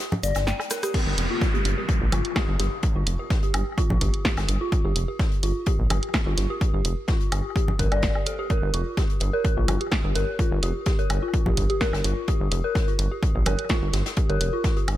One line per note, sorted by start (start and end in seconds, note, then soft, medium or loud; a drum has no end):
0.00 closed hi-hat medium
0.12 closed hi-hat soft
0.12 low conga medium
0.23 0.32 G1 loud
0.23 0.27 D5 loud
0.23 closed hi-hat medium
0.23 shaker medium
0.35 0.52 G1 medium
0.35 snare medium
0.35 closed hi-hat medium
0.35 low woodblock soft
0.35 shaker soft
0.47 0.56 G5 loud
0.47 cross-stick medium
0.47 snare loud
0.47 closed hi-hat soft
0.47 shaker soft
0.60 cross-stick medium
0.60 closed hi-hat medium
0.60 low woodblock medium
0.70 0.77 A#4 medium
0.70 cross-stick medium
0.70 snare loud
0.70 closed hi-hat medium
0.70 shaker medium
0.83 0.88 G4 medium
0.83 cross-stick medium
0.83 closed hi-hat soft
0.83 shaker medium
0.94 1.00 G4 medium
0.94 kick loud
0.94 closed hi-hat medium
0.94 crash loud
0.94 downlifter medium
1.07 1.15 G1 loud
1.18 1.27 F1 medium
1.18 closed hi-hat medium
1.30 1.36 F4 medium
1.41 kick loud
1.41 snare loud
1.41 closed hi-hat medium
1.54 1.57 G4 medium
1.54 closed hi-hat soft
1.65 1.74 G1 loud
1.65 closed hi-hat medium
1.78 1.83 G4 medium
1.89 kick loud
1.89 closed hi-hat medium
2.01 2.09 A#1 medium
2.12 2.21 G1 medium
2.12 2.18 F4 medium
2.12 closed hi-hat medium
2.12 low conga medium
2.12 low woodblock medium
2.25 closed hi-hat soft
2.36 2.40 G4 medium
2.36 kick loud
2.36 snare loud
2.36 closed hi-hat medium
2.36 low woodblock soft
2.48 2.56 G1 medium
2.60 2.68 G1 medium
2.60 2.66 G4 medium
2.60 snare soft
2.60 closed hi-hat medium
2.83 kick loud
2.83 closed hi-hat medium
2.96 3.04 G1 loud
2.96 3.01 F4 medium
3.07 3.16 F1 medium
3.07 closed hi-hat loud
3.07 closed hi-hat medium
3.19 3.23 G4 medium
3.30 kick loud
3.30 snare loud
3.30 closed hi-hat medium
3.43 3.48 G4 medium
3.43 closed hi-hat soft
3.54 3.63 G1 loud
3.54 closed hi-hat medium
3.54 closed hi-hat loud
3.54 low woodblock medium
3.78 3.84 F4 medium
3.78 kick loud
3.78 closed hi-hat medium
3.90 3.98 A#1 medium
3.90 low conga medium
4.01 4.10 G1 medium
4.01 4.05 G4 medium
4.01 kick medium
4.01 closed hi-hat medium
4.14 closed hi-hat soft
4.25 4.31 G4 medium
4.25 kick loud
4.25 snare loud
4.25 closed hi-hat medium
4.37 4.45 G1 medium
4.37 snare medium
4.37 closed hi-hat medium
4.37 low woodblock medium
4.48 4.57 G1 medium
4.48 closed hi-hat medium
4.61 4.66 F4 medium
4.72 kick loud
4.72 closed hi-hat medium
4.85 4.93 G1 loud
4.85 4.88 G4 medium
4.96 5.05 F1 medium
4.96 closed hi-hat loud
4.96 closed hi-hat medium
5.08 5.14 G4 medium
5.19 kick loud
5.19 snare loud
5.19 closed hi-hat medium
5.32 closed hi-hat soft
5.43 5.52 G1 loud
5.43 5.49 F4 medium
5.43 closed hi-hat medium
5.66 5.70 G4 medium
5.66 kick loud
5.66 closed hi-hat loud
5.79 5.87 A#1 medium
5.90 5.99 G1 loud
5.90 5.96 G4 medium
5.90 closed hi-hat medium
5.90 low conga medium
5.90 low woodblock medium
6.03 closed hi-hat soft
6.14 kick loud
6.14 snare loud
6.14 closed hi-hat medium
6.14 low woodblock medium
6.26 6.34 G1 medium
6.26 6.32 F4 medium
6.37 6.46 G1 medium
6.37 snare medium
6.37 closed hi-hat medium
6.50 6.53 G4 medium
6.61 kick loud
6.61 closed hi-hat medium
6.74 6.82 G1 loud
6.74 6.79 G4 medium
6.85 6.94 F1 medium
6.85 closed hi-hat medium
6.85 closed hi-hat loud
7.08 7.14 F4 medium
7.08 kick loud
7.08 snare loud
7.08 closed hi-hat medium
7.21 closed hi-hat soft
7.32 7.41 G1 loud
7.32 7.36 G4 medium
7.32 closed hi-hat loud
7.32 closed hi-hat medium
7.32 low woodblock medium
7.56 7.62 G4 medium
7.56 kick loud
7.56 closed hi-hat medium
7.68 low conga medium
7.79 7.88 G1 loud
7.79 7.85 A#4 medium
7.79 kick medium
7.79 closed hi-hat medium
7.92 8.08 G1 medium
7.92 8.00 D5 medium
7.92 closed hi-hat soft
7.92 low woodblock medium
8.03 kick loud
8.03 snare loud
8.03 closed hi-hat medium
8.15 8.19 G4 medium
8.15 low woodblock medium
8.26 8.36 A4 medium
8.26 closed hi-hat medium
8.39 8.44 G4 loud
8.50 8.56 A#4 loud
8.50 kick loud
8.50 closed hi-hat medium
8.63 8.71 G1 loud
8.74 8.83 F1 medium
8.74 8.80 F4 medium
8.74 closed hi-hat medium
8.97 9.01 G4 medium
8.97 kick loud
8.97 snare loud
8.97 closed hi-hat medium
9.10 closed hi-hat soft
9.20 9.30 G1 loud
9.20 9.27 G4 medium
9.20 closed hi-hat medium
9.33 9.39 A#4 loud
9.45 kick loud
9.45 closed hi-hat medium
9.57 9.65 A#1 medium
9.57 9.62 F4 medium
9.68 9.77 G1 medium
9.68 closed hi-hat medium
9.68 low conga medium
9.68 low woodblock medium
9.81 9.84 G4 medium
9.81 closed hi-hat soft
9.91 kick loud
9.91 snare loud
9.91 closed hi-hat loud
9.91 low woodblock medium
10.04 10.12 G1 medium
10.04 10.10 G4 medium
10.14 10.24 G1 medium
10.14 10.21 A#4 loud
10.14 snare soft
10.14 closed hi-hat medium
10.39 10.45 F4 medium
10.39 kick loud
10.39 closed hi-hat medium
10.52 10.60 G1 loud
10.63 10.72 F1 medium
10.63 10.66 G4 medium
10.63 closed hi-hat medium
10.86 10.92 G4 medium
10.86 kick loud
10.86 snare loud
10.86 closed hi-hat medium
10.99 11.04 A#4 loud
10.99 closed hi-hat soft
11.10 11.19 G1 loud
11.10 closed hi-hat medium
11.10 low woodblock medium
11.22 11.28 F4 medium
11.34 kick loud
11.34 closed hi-hat medium
11.46 11.54 A#1 medium
11.46 11.49 G4 medium
11.46 low conga medium
11.57 11.66 G1 loud
11.57 kick medium
11.57 closed hi-hat medium
11.70 11.75 G4 medium
11.70 closed hi-hat soft
11.81 11.87 A#4 loud
11.81 kick loud
11.81 snare loud
11.81 closed hi-hat medium
11.93 12.01 G1 medium
11.93 snare loud
11.93 closed hi-hat medium
11.93 low woodblock soft
12.04 12.13 G1 medium
12.04 12.10 F4 medium
12.04 closed hi-hat medium
12.28 12.32 G4 medium
12.28 kick loud
12.28 closed hi-hat medium
12.41 12.49 G1 loud
12.51 12.61 F1 medium
12.51 12.58 G4 medium
12.51 closed hi-hat medium
12.64 12.70 A#4 loud
12.75 kick loud
12.75 snare loud
12.75 closed hi-hat medium
12.88 12.93 F4 medium
12.88 closed hi-hat soft
12.99 13.08 G1 loud
12.99 closed hi-hat medium
13.11 13.15 G4 medium
13.23 kick loud
13.23 closed hi-hat medium
13.35 13.43 A#1 medium
13.35 13.40 G4 medium
13.46 13.55 G1 loud
13.46 13.52 A#4 loud
13.46 closed hi-hat medium
13.46 low conga medium
13.46 low woodblock medium
13.59 closed hi-hat soft
13.69 13.76 F4 medium
13.69 kick loud
13.69 snare loud
13.69 closed hi-hat medium
13.69 low woodblock soft
13.82 13.90 G1 medium
13.93 14.02 G1 medium
13.93 13.97 G4 medium
13.93 snare loud
13.93 closed hi-hat medium
14.06 snare loud
14.06 closed hi-hat medium
14.17 14.23 G4 medium
14.17 kick loud
14.17 closed hi-hat medium
14.29 14.37 G1 loud
14.29 14.35 A#4 loud
14.29 closed hi-hat soft
14.41 14.50 F1 medium
14.41 closed hi-hat medium
14.53 14.58 F4 medium
14.64 kick loud
14.64 snare loud
14.64 closed hi-hat medium
14.77 14.80 G4 medium
14.77 closed hi-hat soft
14.88 14.97 G1 loud
14.88 closed hi-hat medium
14.88 low woodblock medium